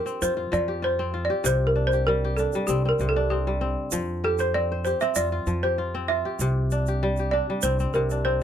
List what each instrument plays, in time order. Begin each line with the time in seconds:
Already playing: kora F3 D4 F4 G4 C5, balafon A#4
0.06 kora C4, shaker
0.22 upright bass F2, kora F4, balafon C5, shaker
0.37 kora F4
0.52 upright bass F2, kora F3, balafon D5, shaker
0.68 kora G4
0.82 kora F4, balafon C5
0.99 kora C4
1.14 kora F4
1.25 balafon D5
1.30 kora G4
1.44 upright bass C2, kora C3, balafon C5, shaker
1.67 balafon A#4
1.76 kora D4
1.87 balafon C5
1.92 kora G4, shaker
2.07 kora G3, balafon A#4
2.24 kora G4
2.37 kora D4, balafon A4, shaker
2.53 kora G3, shaker
2.67 upright bass C2, kora C4, balafon G4, shaker
2.85 kora C4, balafon A#4
2.99 upright bass C2, kora C3, shaker
3.09 balafon A4
3.16 kora D4
3.30 kora C4, balafon G4
3.47 kora G3
3.61 kora C4
3.91 upright bass F2, kora F3, shaker
4.24 kora G4, balafon A4
4.38 kora C5, balafon C5, shaker
4.54 kora C4, balafon D5
4.72 kora C5
4.85 kora G4, balafon C5, shaker
5.01 kora C4, balafon E5, shaker
5.15 upright bass F2, kora F4, balafon D5, shaker
5.32 kora F4
5.47 upright bass F2, kora F3, shaker
5.63 kora G4, balafon C5
5.78 kora F4
5.95 kora C4
6.08 kora F4, balafon E5
6.25 kora G4
6.39 upright bass C2, kora C3, shaker
6.71 kora D4, shaker
6.86 kora G4, shaker
7.03 kora G3
7.17 kora G4, shaker
7.31 kora D4, balafon D5
7.50 kora G3
7.62 upright bass C2, kora C4, balafon C5, shaker
7.79 kora C4, shaker
7.94 upright bass C2, kora C3, balafon A#4, shaker
8.10 kora D4, shaker
8.25 kora C4, balafon C5